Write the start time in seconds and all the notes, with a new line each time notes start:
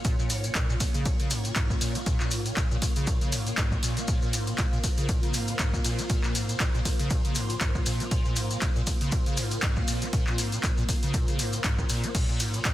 Already playing: A#3 F4 C#5
0.05 A#2, kick, closed hi-hat, ride, maracas
0.19 A#2, maracas
0.30 G#2, open hi-hat, ride, maracas
0.44 A#2, closed hi-hat, maracas
0.55 A#2, kick, clap, closed hi-hat, ride, maracas
0.69 A#2, maracas
0.80 A#2, kick, open hi-hat, ride, maracas
0.94 C#3, closed hi-hat, maracas
1.05 A#2, kick, closed hi-hat, ride, maracas
1.19 C#3, closed hi-hat, maracas
1.31 G#2, open hi-hat, ride, maracas
1.45 A#2, closed hi-hat, maracas
1.55 G#2, kick, clap, closed hi-hat, ride, maracas
1.70 A#2, kick, maracas
1.81 A#2, open hi-hat, ride, maracas
1.95 C#4, closed hi-hat, maracas
2.06 A#2, kick, closed hi-hat, ride, maracas
2.20 A#2, clap, maracas
2.31 G#2, open hi-hat, ride, maracas
2.46 A#2, closed hi-hat, maracas
2.57 A#2, kick, clap, closed hi-hat, ride, maracas
2.71 A#2, maracas
2.82 A#2, kick, open hi-hat, ride, maracas
2.96 C#3, closed hi-hat, maracas
3.07 A#2, kick, closed hi-hat, ride, maracas
3.21 C#3, closed hi-hat, maracas
3.32 G#2, open hi-hat, ride, maracas
3.47 A#2, closed hi-hat, maracas
3.57 G#2, kick, clap, closed hi-hat, ride, maracas
3.72 A#2, kick, maracas
3.83 A#2, open hi-hat, ride, maracas
3.97 C#4, closed hi-hat, maracas
4.08 A#2 C5, kick, closed hi-hat, ride, maracas
4.22 A#2, maracas
4.33 G#2, open hi-hat, ride, maracas
4.47 A#2, closed hi-hat, maracas
4.58 A#2, kick, clap, closed hi-hat, ride, maracas
4.73 A#2, maracas
4.84 A#2, kick, open hi-hat, ride, maracas
4.97 C#3, closed hi-hat, maracas
5.09 A#2, kick, closed hi-hat, ride, maracas
5.23 C#3, closed hi-hat, maracas
5.34 G#2, open hi-hat, ride, maracas
5.47 A#2, closed hi-hat, maracas
5.59 G#2, kick, clap, closed hi-hat, ride, maracas
5.73 A#2, kick, maracas
5.84 A#2, open hi-hat, ride, maracas
5.99 C#4, closed hi-hat, maracas
6.09 A#2, kick, closed hi-hat, ride, maracas
6.24 A#2, clap, maracas
6.35 G#2, open hi-hat, ride, maracas
6.49 A#2, closed hi-hat, maracas
6.60 A#2, kick, clap, closed hi-hat, ride, maracas
6.74 A#2, maracas
6.85 A#2, kick, open hi-hat, ride, maracas
6.99 C#3, closed hi-hat, maracas
7.10 A#2, kick, closed hi-hat, ride, maracas
7.25 C#3, closed hi-hat, maracas
7.35 G#2, open hi-hat, ride, maracas
7.50 A#2, closed hi-hat, maracas
7.61 G#2, kick, clap, closed hi-hat, ride, maracas
7.75 A#2, kick, maracas
7.86 A#2, open hi-hat, ride, maracas
8.00 C#4, closed hi-hat, maracas
8.11 A#2, kick, closed hi-hat, ride, maracas
8.25 A#2, maracas
8.36 G#2, open hi-hat, ride, maracas
8.51 A#2, closed hi-hat, maracas
8.62 A#2, kick, clap, closed hi-hat, ride, maracas
8.76 A#2, maracas
8.87 A#2, kick, open hi-hat, ride, maracas
9.01 C#3, closed hi-hat, maracas
9.11 A#2, kick, closed hi-hat, ride, maracas
9.26 C#3, closed hi-hat, maracas
9.37 G#2, open hi-hat, ride, maracas
9.51 A#2, closed hi-hat, maracas
9.62 G#2, kick, clap, closed hi-hat, ride, maracas
9.76 A#2, kick, maracas
9.88 A#2, open hi-hat, ride, maracas
10.02 C#4, closed hi-hat, maracas
10.13 A#2, kick, closed hi-hat, ride, maracas
10.27 A#2, clap, maracas
10.38 G#2, open hi-hat, ride, maracas
10.52 A#2, closed hi-hat, maracas
10.63 A#2, kick, clap, closed hi-hat, ride, maracas
10.77 A#2, maracas
10.89 A#2, kick, open hi-hat, ride, maracas
11.03 C#3, closed hi-hat, maracas
11.14 A#2, kick, closed hi-hat, ride, maracas
11.28 C#3, closed hi-hat, maracas
11.39 G#2, open hi-hat, ride, maracas
11.52 A#2, closed hi-hat, maracas
11.64 G#2, kick, clap, closed hi-hat, ride, maracas
11.78 A#2, kick, maracas
11.89 A#2, open hi-hat, ride, maracas
12.04 C#4, closed hi-hat, maracas
12.15 A#2 C#5, kick, closed hi-hat, crash, ride, maracas
12.29 A#2, maracas
12.40 G#2, open hi-hat, ride, maracas
12.53 A#2, closed hi-hat, maracas
12.65 A#2, kick, clap, closed hi-hat, ride, maracas